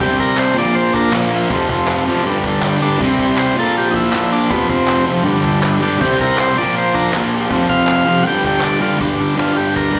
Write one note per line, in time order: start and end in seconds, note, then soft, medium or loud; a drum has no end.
0.00 0.54 C3 medium
0.00 0.56 G3 medium
0.00 0.57 C4 medium
0.00 0.17 E4 loud
0.00 0.17 G4 medium
0.00 0.19 G4 medium
0.00 0.17 C5 medium
0.00 cajon bass loud
0.19 0.36 E4 medium
0.19 0.36 G4 medium
0.19 0.38 A#4 loud
0.19 0.36 C5 medium
0.19 cajon bass medium
0.37 0.55 E4 medium
0.37 0.55 G4 medium
0.37 0.55 A4 medium
0.37 0.57 C5 loud
0.37 cajon slap loud
0.37 clap loud
0.54 1.10 A#2 loud
0.54 1.12 F3 loud
0.54 cajon slap soft
0.58 1.13 A#3 loud
0.58 0.91 F4 medium
0.58 0.91 A#4 medium
0.58 0.76 D5 loud
0.58 0.91 D5 medium
0.75 0.93 C5 loud
0.75 cajon slap medium
0.93 1.11 D4 loud
0.93 1.12 F4 medium
0.93 1.13 A#4 loud
0.93 1.12 A#4 medium
0.93 1.12 D5 medium
0.93 cajon bass loud
1.11 1.48 A#2 medium
1.11 1.50 F3 medium
1.11 cajon slap loud
1.11 clap loud
1.16 1.51 A#3 medium
1.16 1.31 F4 medium
1.16 1.31 A#4 medium
1.16 1.32 D5 medium
1.31 1.49 A#4 medium
1.31 1.49 E5 loud
1.31 cajon slap soft
1.35 1.50 F4 medium
1.49 2.04 F2 medium
1.49 2.06 C3 medium
1.49 cajon bass loud
1.53 2.03 F3 medium
1.53 1.68 F4 loud
1.53 1.68 A4 loud
1.53 1.68 C5 loud
1.69 1.87 F4 loud
1.69 1.87 A4 medium
1.69 1.87 C5 loud
1.69 cajon bass loud
1.88 2.05 F4 medium
1.88 2.05 A4 medium
1.88 2.05 B4 loud
1.88 cajon slap loud
1.88 clap loud
2.04 2.25 C3 medium
2.04 2.23 F3 medium
2.04 2.23 D5 loud
2.04 cajon slap soft
2.09 2.23 F2 medium
2.09 2.24 F4 loud
2.09 2.24 A4 medium
2.23 2.79 G2 loud
2.23 2.81 D3 loud
2.23 2.42 D4 loud
2.23 2.42 G4 loud
2.23 cajon slap medium
2.28 2.78 G3 loud
2.28 2.43 B4 loud
2.44 2.62 D4 loud
2.44 2.62 G4 medium
2.44 2.62 A4 loud
2.44 cajon bass loud
2.62 cajon slap loud
2.62 clap loud
2.66 2.81 D4 loud
2.66 2.81 G4 medium
2.66 2.81 B4 loud
2.79 2.98 D3 medium
2.79 2.98 G3 medium
2.79 3.00 D4 loud
2.79 cajon slap soft
2.84 3.00 G2 medium
2.84 3.01 D4 medium
2.84 3.01 G4 medium
2.88 3.01 B4 medium
2.98 3.54 C3 medium
2.98 3.56 G3 medium
2.98 cajon bass loud
3.04 3.57 C4 medium
3.04 3.19 E4 medium
3.04 3.18 G4 medium
3.04 3.18 C5 loud
3.19 cajon bass loud
3.24 3.38 E4 loud
3.24 3.39 G4 medium
3.24 3.38 C5 loud
3.37 3.56 C5 loud
3.37 cajon slap loud
3.37 clap loud
3.42 3.56 E4 medium
3.42 3.56 G4 medium
3.42 3.56 C5 loud
3.55 4.10 A#2 medium
3.55 4.12 F3 loud
3.55 3.90 D4 medium
3.55 3.90 F4 medium
3.55 3.90 A#4 medium
3.55 cajon slap soft
3.59 4.13 A#3 loud
3.59 3.76 A4 medium
3.76 3.95 G4 loud
3.76 cajon slap medium
3.91 3.93 D#4 medium
3.91 cajon bass loud
3.95 4.11 D4 medium
3.95 4.31 E4 medium
3.95 4.12 F4 medium
3.95 4.11 A#4 medium
4.11 4.48 A#2 medium
4.11 4.50 F3 medium
4.11 4.30 D4 medium
4.11 4.30 F4 medium
4.11 4.30 A4 medium
4.11 cajon slap loud
4.11 clap loud
4.17 4.51 A#3 loud
4.31 4.50 D4 medium
4.31 4.49 D4 medium
4.31 4.49 F4 medium
4.31 4.48 A4 medium
4.31 cajon slap soft
4.49 5.05 F2 medium
4.49 5.06 C3 medium
4.49 4.68 B3 loud
4.49 4.66 C4 loud
4.49 4.67 F4 medium
4.49 4.67 A4 loud
4.49 cajon bass loud
4.54 5.04 F3 medium
4.69 5.06 C4 loud
4.69 4.87 C4 medium
4.69 4.86 F4 medium
4.69 4.87 B4 medium
4.69 cajon bass medium
4.88 5.05 C4 medium
4.88 5.05 F4 medium
4.88 5.05 B4 medium
4.88 cajon slap loud
4.88 clap loud
5.05 5.25 C3 medium
5.05 5.23 F3 loud
5.05 5.24 C4 medium
5.05 5.24 F4 medium
5.05 5.23 A4 medium
5.05 cajon slap soft
5.11 5.22 F2 medium
5.23 5.79 G2 loud
5.23 5.80 D3 medium
5.23 5.41 D4 loud
5.23 5.41 G4 loud
5.23 5.42 B4 loud
5.23 cajon slap medium
5.28 5.79 G3 loud
5.42 5.59 D4 loud
5.42 5.59 G4 medium
5.42 5.60 A4 loud
5.42 cajon bass loud
5.61 5.79 D4 loud
5.61 5.78 G4 medium
5.61 5.78 B4 loud
5.61 cajon slap loud
5.61 clap loud
5.80 5.99 D3 medium
5.80 5.98 G3 medium
5.80 5.98 D4 medium
5.80 6.00 D4 medium
5.80 5.98 G4 medium
5.80 5.98 B4 medium
5.80 cajon slap soft
5.85 6.01 G2 medium
5.99 6.54 C3 medium
5.99 6.56 G3 medium
5.99 6.17 E4 loud
5.99 6.19 G4 medium
5.99 6.17 G4 medium
5.99 6.17 C5 loud
5.99 cajon bass loud
6.05 6.57 C4 medium
6.20 6.36 E4 medium
6.20 6.36 G4 medium
6.20 6.38 A#4 loud
6.20 6.36 C5 medium
6.20 cajon bass medium
6.38 6.55 E4 medium
6.38 6.55 G4 medium
6.38 6.55 C5 medium
6.38 6.57 C5 loud
6.38 cajon slap loud
6.38 clap loud
6.56 7.10 A#2 loud
6.56 7.12 F3 loud
6.56 6.90 D4 medium
6.56 6.90 F4 medium
6.56 6.90 A#4 medium
6.56 6.75 D5 loud
6.56 cajon slap soft
6.61 7.14 A#3 loud
6.76 6.95 C5 loud
6.76 cajon slap medium
6.94 7.10 D4 medium
6.94 7.11 D4 loud
6.94 7.11 F4 medium
6.94 7.12 A#4 loud
6.94 7.11 A#4 medium
6.94 cajon bass loud
7.11 7.48 A#2 medium
7.11 7.50 F3 medium
7.11 cajon slap loud
7.11 clap loud
7.16 7.51 A#3 loud
7.16 7.31 D4 medium
7.16 7.31 F4 medium
7.16 7.31 A4 loud
7.33 7.49 D4 medium
7.33 7.49 F4 medium
7.33 7.49 G4 loud
7.33 cajon slap soft
7.50 8.05 F2 medium
7.50 8.06 C3 medium
7.50 7.67 C4 loud
7.50 7.67 F4 loud
7.50 7.67 A4 loud
7.50 cajon bass loud
7.55 8.04 F3 medium
7.69 7.86 C4 medium
7.69 7.86 F4 medium
7.69 7.86 B4 medium
7.69 8.24 F5 loud
7.69 cajon bass loud
7.87 8.04 C4 medium
7.87 8.04 F4 medium
7.87 8.05 A4 medium
7.87 cajon slap loud
7.87 clap loud
8.05 8.25 C3 medium
8.05 8.23 F3 loud
8.05 8.24 C4 medium
8.05 8.23 F4 medium
8.05 8.24 G4 medium
8.05 cajon slap soft
8.11 8.23 F2 medium
8.23 8.80 G2 medium
8.23 8.25 F#5 medium
8.23 cajon slap medium
8.27 8.81 D3 loud
8.27 8.79 G3 loud
8.27 8.43 D4 medium
8.27 8.42 G4 medium
8.27 8.43 B4 loud
8.27 8.44 G5 loud
8.44 8.62 D4 medium
8.44 8.62 G4 medium
8.44 8.62 A4 medium
8.44 8.63 G5 loud
8.44 cajon bass loud
8.59 8.61 C#5 medium
8.59 clap loud
8.63 8.80 D4 medium
8.63 8.80 G4 medium
8.63 8.80 D5 loud
8.63 8.81 D5 medium
8.63 cajon slap loud
8.80 8.99 D3 medium
8.80 8.98 G3 medium
8.80 8.98 D4 medium
8.80 8.99 F4 medium
8.80 8.98 G4 medium
8.80 8.99 B4 medium
8.80 9.00 D5 loud
8.80 cajon slap soft
8.85 8.97 G2 medium
8.98 9.35 G2 medium
8.98 9.20 D3 medium
8.98 9.37 D4 medium
8.98 cajon bass loud
9.02 9.15 G3 medium
9.02 9.18 D4 medium
9.02 9.18 G4 medium
9.02 9.18 B4 loud
9.15 9.40 G3 medium
9.21 9.37 D3 medium
9.21 9.37 D4 medium
9.21 9.36 G4 medium
9.21 9.37 B4 medium
9.35 9.99 G2 medium
9.35 9.58 D3 medium
9.35 9.54 D4 medium
9.35 9.54 G4 medium
9.35 9.55 B4 medium
9.39 9.54 G3 loud
9.39 9.57 F4 medium
9.39 cajon slap loud
9.54 9.91 G3 medium
9.54 9.73 D4 medium
9.54 9.73 G4 medium
9.54 9.75 G4 medium
9.54 9.73 A4 medium
9.59 9.95 D3 medium
9.74 9.91 D4 medium
9.74 9.91 G4 medium
9.74 9.99 A#4 medium
9.74 9.92 D5 medium
9.74 cajon bass loud
9.91 9.99 G3 medium
9.91 9.99 D4 loud
9.91 9.99 G4 medium
9.91 9.99 B4 loud
9.95 9.99 D3 medium
9.95 cajon bass medium